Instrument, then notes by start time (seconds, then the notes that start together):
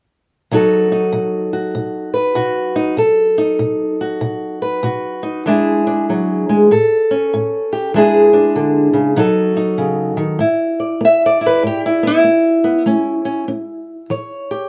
steel-string acoustic guitar
0.51 B2 F#3 D#4 F#4 A4
0.92 D#4
1.12 B2
1.53 F#4
1.75 B2
2.14 B4
2.35 B2 F#4
2.76 D#4
2.97 B2 A4
3.38 D#4
3.59 B2
4.01 F#4
4.21 B2
4.62 B4
4.83 B2 F#4
5.23 D#4
5.46 E3 G#3 D4 E4 G#4
5.87 D4
6.10 F#3
6.49 G#3
6.71 A2 A4
7.11 C#4
7.34 A2
7.73 G4
7.94 E3 G#3 D4 E4 G#4
8.33 D4
8.56 D3
8.93 C#3
9.16 B2 F#3 D#4 F#4 A4
9.57 D#4
9.78 C#3
10.17 D#3
10.39 G#2 E4
10.80 D5
11.01 B3
11.05 E5
11.26 D5
11.41 E4
11.46 B4
11.63 G#2 G4
11.86 E4
12.03 B3
12.07 E4
12.24 B3
12.64 B3
12.86 A3 C#4
13.25 C#4
13.48 C#4
14.10 E3 C#5
14.51 G4